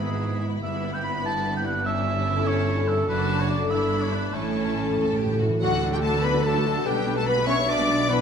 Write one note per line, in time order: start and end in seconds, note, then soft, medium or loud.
0.00 0.63 G#1 medium
0.00 0.63 G#2 medium
0.00 0.64 G#2 medium
0.00 0.59 B3 medium
0.00 0.82 B3 soft
0.00 0.41 E4 medium
0.00 1.80 E4 medium
0.00 0.20 G#4 medium
0.00 0.41 G#4 medium
0.00 1.03 B4 medium
0.00 0.59 B5 medium
0.21 0.64 G#4 medium
0.42 1.23 E4 medium
0.62 3.05 G1 medium
0.62 1.84 G2 medium
0.62 3.04 G2 medium
0.62 1.81 B3 medium
0.62 0.96 E5 medium
0.62 1.81 B5 medium
0.83 1.87 B3 medium
0.94 1.03 G5 loud
1.04 1.43 B4 medium
1.04 1.24 B5 loud
1.24 1.63 E4 medium
1.24 1.55 A5 loud
1.44 1.87 B4 medium
1.57 1.65 G5 medium
1.65 2.86 E4 medium
1.65 1.85 F#5 loud
1.84 3.10 G2 medium
1.84 3.05 C#4 medium
1.84 3.04 E4 medium
1.84 2.48 E5 loud
1.84 3.04 A5 medium
2.06 3.10 C#4 medium
2.26 2.65 A4 medium
2.47 3.10 C#5 medium
2.47 2.89 C#5 loud
2.67 3.49 A4 medium
2.87 3.10 E4 medium
2.87 3.08 A4 medium
3.07 3.67 F#1 medium
3.07 3.66 F#2 medium
3.07 3.72 F#2 medium
3.07 3.66 D4 medium
3.07 3.66 F#4 medium
3.07 3.41 B4 loud
3.07 3.67 A5 medium
3.28 3.90 D4 medium
3.40 3.49 C#5 medium
3.49 3.72 F#4 medium
3.49 3.72 A4 medium
3.49 3.72 D5 medium
3.70 4.34 G1 medium
3.70 4.34 G2 medium
3.70 4.35 G2 medium
3.70 4.32 D4 medium
3.70 4.32 E4 medium
3.70 4.03 E5 medium
3.70 4.32 B5 medium
4.01 4.14 C#5 medium
4.12 5.39 E4 medium
4.12 4.35 B4 medium
4.33 5.39 A1 medium
4.33 5.39 A2 medium
4.33 5.63 A2 medium
4.33 4.41 A2 soft
4.33 5.41 C#4 medium
4.33 4.92 E4 medium
4.33 4.98 C#5 medium
4.33 5.41 A5 medium
4.42 4.49 A2 soft
4.51 4.56 A2 soft
4.55 5.63 C#4 medium
4.66 4.72 A2 soft
4.74 4.80 A2 medium
4.82 4.88 A2 soft
4.89 4.95 A2 medium
4.96 5.03 A2 medium
4.96 5.18 A4 medium
4.96 5.63 C#5 medium
5.04 5.11 A2 medium
5.12 5.18 A2 medium
5.18 5.25 A2 medium
5.18 5.40 G4 medium
5.18 6.22 A4 soft
5.26 5.32 A2 medium
5.33 5.39 A2 medium
5.39 5.48 A2 medium
5.39 5.63 E4 medium
5.39 5.61 F#4 medium
5.49 5.56 A2 loud
5.59 6.82 D2 medium
5.59 6.82 D3 medium
5.59 6.87 D3 medium
5.59 5.74 F#3 medium
5.59 5.71 F#3 medium
5.59 5.71 D4 medium
5.59 5.91 F#4 medium
5.59 5.76 F#4 medium
5.59 6.82 A4 medium
5.59 5.90 F#5 medium
5.72 5.82 A3 medium
5.72 5.83 F#4 medium
5.82 5.93 F#3 medium
5.82 6.87 A3 medium
5.82 5.93 D4 medium
5.91 5.96 G3 medium
5.91 6.04 A3 medium
5.91 6.03 F#4 medium
5.91 5.97 G4 medium
5.91 5.98 G4 medium
5.91 6.04 G4 medium
5.91 5.97 G5 medium
6.01 6.13 F#3 medium
6.01 6.11 A3 medium
6.01 6.43 D4 medium
6.01 6.13 D4 soft
6.01 6.23 A4 medium
6.01 6.24 A4 medium
6.01 6.23 A5 medium
6.14 6.24 A3 medium
6.14 6.24 F#4 medium
6.22 6.35 F#3 medium
6.22 6.43 B3 medium
6.22 6.35 D4 medium
6.22 6.44 B4 medium
6.22 6.45 B4 medium
6.22 6.44 B4 medium
6.22 6.44 B5 medium
6.35 6.45 A3 medium
6.35 6.45 F#4 soft
6.42 6.54 F#3 medium
6.42 6.84 A3 medium
6.42 7.48 D4 medium
6.42 6.54 D4 medium
6.42 6.85 A4 medium
6.42 6.86 A4 medium
6.42 6.85 A4 medium
6.42 6.85 A5 medium
6.55 6.66 A3 medium
6.55 6.66 F#4 medium
6.66 6.76 F#3 medium
6.66 6.76 D4 medium
6.66 6.88 A4 medium
6.76 6.86 A3 medium
6.76 6.86 F#4 medium
6.85 8.21 B1 medium
6.85 8.08 B2 medium
6.85 8.21 B2 medium
6.85 7.16 G3 medium
6.85 6.95 B3 medium
6.85 6.96 D4 medium
6.85 7.17 G4 medium
6.85 6.93 G4 medium
6.85 7.46 B4 medium
6.85 7.17 G5 medium
6.96 7.07 G3 medium
6.96 7.05 B3 medium
7.06 7.14 B3 medium
7.06 8.21 B3 medium
7.06 7.16 D4 medium
7.15 7.27 G3 medium
7.15 7.21 A3 medium
7.15 7.26 B3 medium
7.15 7.20 A4 medium
7.15 7.27 A4 medium
7.15 7.27 A5 medium
7.26 8.21 G3 medium
7.26 7.36 B3 medium
7.26 7.37 D4 medium
7.26 7.48 B4 medium
7.26 7.33 B4 medium
7.26 7.48 B4 medium
7.26 7.48 B5 medium
7.37 7.48 G3 medium
7.37 7.47 B3 medium
7.47 7.57 B3 medium
7.47 7.56 C#4 medium
7.47 7.58 D4 medium
7.47 7.87 D4 medium
7.47 7.68 C#5 medium
7.47 7.58 C#5 medium
7.47 8.10 E5 loud
7.47 7.68 C#6 medium
7.58 7.69 G3 medium
7.58 7.67 B3 medium
7.66 7.78 B3 medium
7.66 8.08 D4 medium
7.66 7.78 D4 medium
7.66 8.21 B4 medium
7.66 8.09 D5 medium
7.66 8.10 D6 medium
7.79 7.89 G3 medium
7.79 7.87 B3 medium
7.88 7.98 B3 medium
7.88 8.21 D4 medium
7.88 7.99 D4 medium
7.99 8.09 G3 medium
7.99 8.09 B3 medium
8.09 8.21 B2 medium
8.09 8.19 E3 medium
8.09 8.21 B3 medium
8.09 8.19 D4 medium
8.09 8.21 B4 loud
8.09 8.21 B4 medium
8.09 8.21 D5 medium
8.09 8.21 B5 loud